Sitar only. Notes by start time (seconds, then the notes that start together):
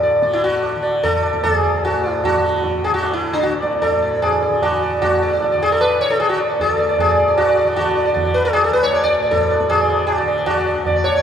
0.03 D5
0.23 D5
0.33 E4
0.44 F#4
0.83 D5
1.03 A4
1.22 D5
1.44 G#4
1.63 D5
1.85 F#4
2.04 D5
2.12 E4
2.25 F#4
2.84 G#4
2.94 F#4
3.13 E4
3.33 D4
3.43 F#4
3.62 D5
3.82 A4 D5
4.02 D5
4.22 G#4 D5
4.42 D5
4.63 F#4 D5
4.82 D5
5.02 F#4
5.23 D5
5.33 D5
5.42 D5
5.52 D5
5.62 G#4
5.72 A4
5.81 B4
6.01 C#5
6.11 A4
6.20 G#4
6.29 F#4
6.38 D5
6.49 D5
6.61 A4
6.69 D5
6.79 D5
6.89 D5
7.00 G#4
7.09 D5
7.17 D5
7.28 D5
7.38 F#4
7.47 D5
7.57 D5
7.67 D5
7.76 F#4
7.85 D5
7.95 D5
8.05 D5
8.14 D5
8.25 D5
8.34 B4
8.45 A4
8.53 G#4
8.64 A4
8.73 B4
8.83 C#5
8.94 D5
9.03 D5
9.13 D5
9.22 D5
9.31 A4
9.41 D5
9.50 D5
9.70 G#4
9.81 D5
9.90 D5
9.99 D5
10.07 F#4
10.18 D5
10.28 D5
10.38 D5
10.46 F#4
10.58 D5
10.67 D5
10.86 D5
10.96 D5
11.04 C#5
11.15 D5